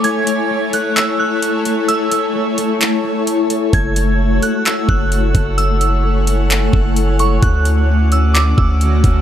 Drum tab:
HH |xx-xx-xx|xx-xx-xx|xx-xx-xx|xx-xx-xx|
CP |----x---|----x---|----x---|----x---|
BD |--------|--------|o----o-o|-----o--|

HH |xx-xx-xx|
CP |----x---|
BD |o----o-o|